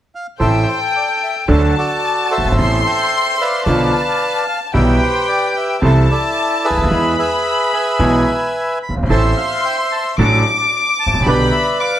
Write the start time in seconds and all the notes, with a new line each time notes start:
0.15 F5
0.39 A1 A2 E3 A3 C4 A4 C5 E5 G5
0.68 C5
0.96 D5
1.23 E5
1.48 D2 D3 F#3 A3 D4 F#4 A4 C5 A5
1.77 F#4 A4 D5
2.30 A4 C5 E5
2.38 F#1
2.45 G1
2.52 G#1
2.58 A1 A2 E3 A3 C4 A4 C6
2.86 C5 E5 G5
3.41 B4 D5 F5
3.66 B1 B2 D3 F3 B3 F4 A5
4.48 F5
4.73 B1 B2 E3 G3 B3 G4 B4 E5 G5
5.02 C5
5.28 D5
5.57 E5
5.82 C2 C3 E3 A3 C4 E4 A4 C5 A5
6.11 A4 D5
6.65 G#4 B4 E5
6.70 C#2
6.77 D2
6.83 D#2
6.91 E2 E3 G#3 B3 G#4 B5
7.19 G#4 B4 E5
7.74 B4 E5 G#5
7.99 B1 B2 E3 G#3 B3 G#4
8.83 B5
8.89 F#1
8.96 G1
9.02 G#1
9.09 A1 A2 E3 A3 C4 E4 A4 C5 E5 A5 C6
9.37 F5
9.65 G5
9.92 A5
10.18 A1 A2 F#3 A3 D4 F#4 A4 D6
11.00 A5
11.06 G#1
11.13 A1
11.20 A#1
11.26 B1 B2 D3 G3 B3 D4 G4 B4 D5 G5 B5
11.52 E5
11.80 F5 D6